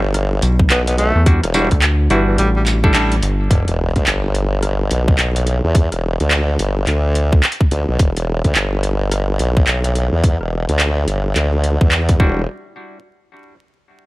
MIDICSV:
0, 0, Header, 1, 7, 480
1, 0, Start_track
1, 0, Key_signature, 1, "minor"
1, 0, Tempo, 560748
1, 1080, Time_signature, 4, 2, 24, 8
1, 12035, End_track
2, 0, Start_track
2, 0, Title_t, "Clav"
2, 0, Program_c, 0, 7
2, 1080, Note_on_c, 0, 62, 77
2, 1080, Note_on_c, 0, 64, 75
2, 1081, Note_on_c, 0, 55, 86
2, 1081, Note_on_c, 0, 66, 95
2, 1204, Note_off_c, 0, 62, 0
2, 1204, Note_off_c, 0, 64, 0
2, 1205, Note_off_c, 0, 55, 0
2, 1205, Note_off_c, 0, 66, 0
2, 1320, Note_on_c, 0, 66, 106
2, 1321, Note_on_c, 0, 55, 94
2, 1321, Note_on_c, 0, 62, 82
2, 1321, Note_on_c, 0, 64, 88
2, 1445, Note_off_c, 0, 55, 0
2, 1445, Note_off_c, 0, 62, 0
2, 1445, Note_off_c, 0, 64, 0
2, 1445, Note_off_c, 0, 66, 0
2, 1803, Note_on_c, 0, 55, 85
2, 1803, Note_on_c, 0, 62, 82
2, 1803, Note_on_c, 0, 64, 86
2, 1803, Note_on_c, 0, 66, 98
2, 2399, Note_off_c, 0, 55, 0
2, 2399, Note_off_c, 0, 62, 0
2, 2399, Note_off_c, 0, 64, 0
2, 2399, Note_off_c, 0, 66, 0
2, 2428, Note_on_c, 0, 64, 93
2, 2429, Note_on_c, 0, 62, 96
2, 2429, Note_on_c, 0, 69, 112
2, 2430, Note_on_c, 0, 55, 99
2, 2506, Note_off_c, 0, 62, 0
2, 2506, Note_off_c, 0, 64, 0
2, 2507, Note_off_c, 0, 55, 0
2, 2507, Note_off_c, 0, 69, 0
2, 2519, Note_on_c, 0, 64, 91
2, 2519, Note_on_c, 0, 69, 111
2, 2520, Note_on_c, 0, 55, 96
2, 2520, Note_on_c, 0, 62, 93
2, 2699, Note_off_c, 0, 64, 0
2, 2699, Note_off_c, 0, 69, 0
2, 2700, Note_off_c, 0, 55, 0
2, 2700, Note_off_c, 0, 62, 0
2, 10441, Note_on_c, 0, 55, 82
2, 10442, Note_on_c, 0, 62, 77
2, 10442, Note_on_c, 0, 64, 74
2, 10442, Note_on_c, 0, 66, 88
2, 10630, Note_off_c, 0, 55, 0
2, 10630, Note_off_c, 0, 62, 0
2, 10630, Note_off_c, 0, 64, 0
2, 10630, Note_off_c, 0, 66, 0
2, 12035, End_track
3, 0, Start_track
3, 0, Title_t, "Tenor saxophone"
3, 0, Program_c, 1, 66
3, 603, Note_on_c, 1, 59, 88
3, 696, Note_off_c, 1, 59, 0
3, 750, Note_on_c, 1, 59, 80
3, 808, Note_off_c, 1, 59, 0
3, 838, Note_on_c, 1, 57, 96
3, 1057, Note_off_c, 1, 57, 0
3, 1804, Note_on_c, 1, 52, 92
3, 1896, Note_off_c, 1, 52, 0
3, 1946, Note_on_c, 1, 52, 80
3, 2006, Note_off_c, 1, 52, 0
3, 2041, Note_on_c, 1, 55, 99
3, 2135, Note_off_c, 1, 55, 0
3, 2191, Note_on_c, 1, 55, 77
3, 2248, Note_off_c, 1, 55, 0
3, 12035, End_track
4, 0, Start_track
4, 0, Title_t, "Wobble bass"
4, 0, Program_c, 2, 39
4, 0, Note_on_c, 2, 31, 104
4, 345, Note_off_c, 2, 31, 0
4, 600, Note_on_c, 2, 35, 100
4, 964, Note_off_c, 2, 35, 0
4, 1229, Note_on_c, 2, 28, 96
4, 1444, Note_off_c, 2, 28, 0
4, 3002, Note_on_c, 2, 28, 93
4, 3125, Note_off_c, 2, 28, 0
4, 3151, Note_on_c, 2, 28, 99
4, 3366, Note_off_c, 2, 28, 0
4, 3390, Note_on_c, 2, 38, 94
4, 3467, Note_off_c, 2, 38, 0
4, 3481, Note_on_c, 2, 31, 101
4, 4185, Note_off_c, 2, 31, 0
4, 4202, Note_on_c, 2, 35, 96
4, 4426, Note_off_c, 2, 35, 0
4, 4438, Note_on_c, 2, 35, 88
4, 4803, Note_off_c, 2, 35, 0
4, 4830, Note_on_c, 2, 40, 94
4, 5045, Note_off_c, 2, 40, 0
4, 5069, Note_on_c, 2, 28, 91
4, 5285, Note_off_c, 2, 28, 0
4, 5312, Note_on_c, 2, 38, 92
4, 5627, Note_off_c, 2, 38, 0
4, 5644, Note_on_c, 2, 31, 91
4, 5867, Note_off_c, 2, 31, 0
4, 5883, Note_on_c, 2, 38, 101
4, 6347, Note_off_c, 2, 38, 0
4, 6602, Note_on_c, 2, 38, 97
4, 6725, Note_off_c, 2, 38, 0
4, 6751, Note_on_c, 2, 35, 98
4, 6827, Note_off_c, 2, 35, 0
4, 6844, Note_on_c, 2, 28, 98
4, 6965, Note_off_c, 2, 28, 0
4, 6989, Note_on_c, 2, 28, 91
4, 7205, Note_off_c, 2, 28, 0
4, 7229, Note_on_c, 2, 38, 96
4, 7306, Note_off_c, 2, 38, 0
4, 7320, Note_on_c, 2, 31, 102
4, 8025, Note_off_c, 2, 31, 0
4, 8040, Note_on_c, 2, 35, 100
4, 8265, Note_off_c, 2, 35, 0
4, 8283, Note_on_c, 2, 35, 96
4, 8645, Note_off_c, 2, 35, 0
4, 8667, Note_on_c, 2, 40, 93
4, 8883, Note_off_c, 2, 40, 0
4, 8908, Note_on_c, 2, 28, 96
4, 9124, Note_off_c, 2, 28, 0
4, 9151, Note_on_c, 2, 38, 98
4, 9467, Note_off_c, 2, 38, 0
4, 9480, Note_on_c, 2, 31, 96
4, 9705, Note_off_c, 2, 31, 0
4, 9722, Note_on_c, 2, 38, 102
4, 10085, Note_off_c, 2, 38, 0
4, 10110, Note_on_c, 2, 40, 98
4, 10437, Note_off_c, 2, 40, 0
4, 10442, Note_on_c, 2, 28, 103
4, 10664, Note_off_c, 2, 28, 0
4, 12035, End_track
5, 0, Start_track
5, 0, Title_t, "Analog synth bass"
5, 0, Program_c, 3, 38
5, 364, Note_on_c, 3, 35, 100
5, 587, Note_off_c, 3, 35, 0
5, 989, Note_on_c, 3, 40, 100
5, 1205, Note_off_c, 3, 40, 0
5, 1469, Note_on_c, 3, 38, 99
5, 1786, Note_off_c, 3, 38, 0
5, 1800, Note_on_c, 3, 31, 97
5, 2025, Note_off_c, 3, 31, 0
5, 2040, Note_on_c, 3, 33, 97
5, 2745, Note_off_c, 3, 33, 0
5, 2761, Note_on_c, 3, 31, 101
5, 2986, Note_off_c, 3, 31, 0
5, 12035, End_track
6, 0, Start_track
6, 0, Title_t, "Sub drop"
6, 0, Program_c, 4, 103
6, 3001, Note_on_c, 4, 60, 69
6, 4921, Note_off_c, 4, 60, 0
6, 12035, End_track
7, 0, Start_track
7, 0, Title_t, "Drums"
7, 122, Note_on_c, 9, 37, 52
7, 122, Note_on_c, 9, 42, 75
7, 208, Note_off_c, 9, 37, 0
7, 208, Note_off_c, 9, 42, 0
7, 362, Note_on_c, 9, 42, 69
7, 362, Note_on_c, 9, 54, 69
7, 447, Note_off_c, 9, 42, 0
7, 447, Note_off_c, 9, 54, 0
7, 509, Note_on_c, 9, 36, 98
7, 594, Note_off_c, 9, 36, 0
7, 602, Note_on_c, 9, 39, 116
7, 602, Note_on_c, 9, 42, 81
7, 688, Note_off_c, 9, 39, 0
7, 688, Note_off_c, 9, 42, 0
7, 748, Note_on_c, 9, 42, 60
7, 834, Note_off_c, 9, 42, 0
7, 841, Note_on_c, 9, 42, 63
7, 927, Note_off_c, 9, 42, 0
7, 1081, Note_on_c, 9, 36, 119
7, 1081, Note_on_c, 9, 42, 90
7, 1166, Note_off_c, 9, 42, 0
7, 1167, Note_off_c, 9, 36, 0
7, 1228, Note_on_c, 9, 37, 44
7, 1228, Note_on_c, 9, 42, 64
7, 1314, Note_off_c, 9, 37, 0
7, 1314, Note_off_c, 9, 42, 0
7, 1318, Note_on_c, 9, 54, 64
7, 1404, Note_off_c, 9, 54, 0
7, 1465, Note_on_c, 9, 42, 38
7, 1469, Note_on_c, 9, 36, 62
7, 1551, Note_off_c, 9, 42, 0
7, 1555, Note_off_c, 9, 36, 0
7, 1558, Note_on_c, 9, 39, 124
7, 1558, Note_on_c, 9, 42, 83
7, 1644, Note_off_c, 9, 39, 0
7, 1644, Note_off_c, 9, 42, 0
7, 1799, Note_on_c, 9, 42, 64
7, 1885, Note_off_c, 9, 42, 0
7, 2040, Note_on_c, 9, 42, 79
7, 2125, Note_off_c, 9, 42, 0
7, 2281, Note_on_c, 9, 39, 61
7, 2281, Note_on_c, 9, 42, 70
7, 2281, Note_on_c, 9, 54, 65
7, 2367, Note_off_c, 9, 39, 0
7, 2367, Note_off_c, 9, 42, 0
7, 2367, Note_off_c, 9, 54, 0
7, 2429, Note_on_c, 9, 36, 103
7, 2514, Note_off_c, 9, 36, 0
7, 2520, Note_on_c, 9, 39, 117
7, 2520, Note_on_c, 9, 42, 81
7, 2606, Note_off_c, 9, 39, 0
7, 2606, Note_off_c, 9, 42, 0
7, 2668, Note_on_c, 9, 42, 66
7, 2753, Note_off_c, 9, 42, 0
7, 2761, Note_on_c, 9, 42, 65
7, 2846, Note_off_c, 9, 42, 0
7, 3002, Note_on_c, 9, 36, 116
7, 3002, Note_on_c, 9, 42, 89
7, 3087, Note_off_c, 9, 36, 0
7, 3087, Note_off_c, 9, 42, 0
7, 3149, Note_on_c, 9, 42, 68
7, 3234, Note_off_c, 9, 42, 0
7, 3388, Note_on_c, 9, 42, 38
7, 3389, Note_on_c, 9, 36, 59
7, 3473, Note_off_c, 9, 42, 0
7, 3475, Note_off_c, 9, 36, 0
7, 3481, Note_on_c, 9, 39, 120
7, 3481, Note_on_c, 9, 42, 87
7, 3567, Note_off_c, 9, 39, 0
7, 3567, Note_off_c, 9, 42, 0
7, 3721, Note_on_c, 9, 42, 64
7, 3806, Note_off_c, 9, 42, 0
7, 3960, Note_on_c, 9, 37, 52
7, 3960, Note_on_c, 9, 42, 79
7, 4045, Note_off_c, 9, 37, 0
7, 4045, Note_off_c, 9, 42, 0
7, 4200, Note_on_c, 9, 42, 70
7, 4286, Note_off_c, 9, 42, 0
7, 4349, Note_on_c, 9, 36, 110
7, 4435, Note_off_c, 9, 36, 0
7, 4439, Note_on_c, 9, 39, 114
7, 4439, Note_on_c, 9, 42, 79
7, 4525, Note_off_c, 9, 39, 0
7, 4525, Note_off_c, 9, 42, 0
7, 4588, Note_on_c, 9, 42, 61
7, 4674, Note_off_c, 9, 42, 0
7, 4680, Note_on_c, 9, 42, 62
7, 4765, Note_off_c, 9, 42, 0
7, 4921, Note_on_c, 9, 42, 88
7, 4922, Note_on_c, 9, 36, 126
7, 5006, Note_off_c, 9, 42, 0
7, 5008, Note_off_c, 9, 36, 0
7, 5069, Note_on_c, 9, 37, 39
7, 5069, Note_on_c, 9, 42, 67
7, 5154, Note_off_c, 9, 37, 0
7, 5154, Note_off_c, 9, 42, 0
7, 5308, Note_on_c, 9, 42, 40
7, 5394, Note_off_c, 9, 42, 0
7, 5401, Note_on_c, 9, 39, 127
7, 5401, Note_on_c, 9, 42, 85
7, 5487, Note_off_c, 9, 39, 0
7, 5487, Note_off_c, 9, 42, 0
7, 5643, Note_on_c, 9, 42, 66
7, 5728, Note_off_c, 9, 42, 0
7, 5882, Note_on_c, 9, 39, 63
7, 5882, Note_on_c, 9, 42, 81
7, 5967, Note_off_c, 9, 39, 0
7, 5967, Note_off_c, 9, 42, 0
7, 6123, Note_on_c, 9, 42, 70
7, 6208, Note_off_c, 9, 42, 0
7, 6271, Note_on_c, 9, 36, 110
7, 6356, Note_off_c, 9, 36, 0
7, 6364, Note_on_c, 9, 39, 126
7, 6364, Note_on_c, 9, 42, 85
7, 6437, Note_off_c, 9, 42, 0
7, 6437, Note_on_c, 9, 42, 64
7, 6450, Note_off_c, 9, 39, 0
7, 6511, Note_on_c, 9, 36, 111
7, 6522, Note_off_c, 9, 42, 0
7, 6596, Note_off_c, 9, 36, 0
7, 6603, Note_on_c, 9, 42, 66
7, 6688, Note_off_c, 9, 42, 0
7, 6842, Note_on_c, 9, 42, 85
7, 6843, Note_on_c, 9, 36, 124
7, 6928, Note_off_c, 9, 42, 0
7, 6929, Note_off_c, 9, 36, 0
7, 6989, Note_on_c, 9, 42, 66
7, 7075, Note_off_c, 9, 42, 0
7, 7228, Note_on_c, 9, 42, 38
7, 7230, Note_on_c, 9, 36, 63
7, 7314, Note_off_c, 9, 42, 0
7, 7315, Note_off_c, 9, 36, 0
7, 7322, Note_on_c, 9, 39, 126
7, 7322, Note_on_c, 9, 42, 82
7, 7408, Note_off_c, 9, 39, 0
7, 7408, Note_off_c, 9, 42, 0
7, 7561, Note_on_c, 9, 42, 66
7, 7647, Note_off_c, 9, 42, 0
7, 7803, Note_on_c, 9, 37, 52
7, 7803, Note_on_c, 9, 42, 78
7, 7888, Note_off_c, 9, 37, 0
7, 7888, Note_off_c, 9, 42, 0
7, 8041, Note_on_c, 9, 42, 67
7, 8127, Note_off_c, 9, 42, 0
7, 8189, Note_on_c, 9, 36, 106
7, 8275, Note_off_c, 9, 36, 0
7, 8280, Note_on_c, 9, 39, 119
7, 8280, Note_on_c, 9, 42, 78
7, 8366, Note_off_c, 9, 39, 0
7, 8366, Note_off_c, 9, 42, 0
7, 8426, Note_on_c, 9, 42, 61
7, 8512, Note_off_c, 9, 42, 0
7, 8521, Note_on_c, 9, 42, 64
7, 8606, Note_off_c, 9, 42, 0
7, 8762, Note_on_c, 9, 36, 126
7, 8762, Note_on_c, 9, 42, 81
7, 8848, Note_off_c, 9, 36, 0
7, 8848, Note_off_c, 9, 42, 0
7, 8909, Note_on_c, 9, 37, 36
7, 8995, Note_off_c, 9, 37, 0
7, 9149, Note_on_c, 9, 42, 38
7, 9235, Note_off_c, 9, 42, 0
7, 9242, Note_on_c, 9, 39, 120
7, 9242, Note_on_c, 9, 42, 81
7, 9328, Note_off_c, 9, 39, 0
7, 9328, Note_off_c, 9, 42, 0
7, 9482, Note_on_c, 9, 42, 60
7, 9568, Note_off_c, 9, 42, 0
7, 9722, Note_on_c, 9, 39, 60
7, 9722, Note_on_c, 9, 42, 75
7, 9808, Note_off_c, 9, 39, 0
7, 9808, Note_off_c, 9, 42, 0
7, 9961, Note_on_c, 9, 42, 64
7, 10046, Note_off_c, 9, 42, 0
7, 10109, Note_on_c, 9, 36, 111
7, 10195, Note_off_c, 9, 36, 0
7, 10200, Note_on_c, 9, 39, 121
7, 10200, Note_on_c, 9, 42, 78
7, 10286, Note_off_c, 9, 39, 0
7, 10286, Note_off_c, 9, 42, 0
7, 10346, Note_on_c, 9, 42, 59
7, 10349, Note_on_c, 9, 36, 107
7, 10432, Note_off_c, 9, 42, 0
7, 10435, Note_off_c, 9, 36, 0
7, 10441, Note_on_c, 9, 36, 111
7, 10527, Note_off_c, 9, 36, 0
7, 12035, End_track
0, 0, End_of_file